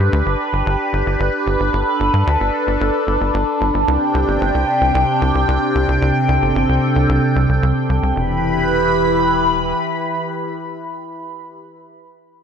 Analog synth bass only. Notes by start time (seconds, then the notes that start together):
0.13 D2
0.26 G1
0.53 G1
0.66 G1
0.93 G1
1.06 G1
1.20 G1
1.47 G1
1.60 G1
1.73 G1
2.00 G1
2.14 G2
2.27 D2
2.40 G1
2.67 G1
2.81 G1
3.07 G1
3.21 G1
3.34 G1
3.61 G1
3.74 G1
3.88 C2
4.14 C2
4.28 G1
4.41 G1
4.54 C2
4.81 C2
4.95 C2
5.22 C2
5.35 C2
5.48 C2
5.75 C2
5.88 C2
6.02 C2
6.29 C2
6.42 G1
6.55 G1
6.69 C2
6.96 C2
7.09 C2
7.36 C2
7.49 C2
7.63 C2
7.89 C2
8.03 C2
8.16 E1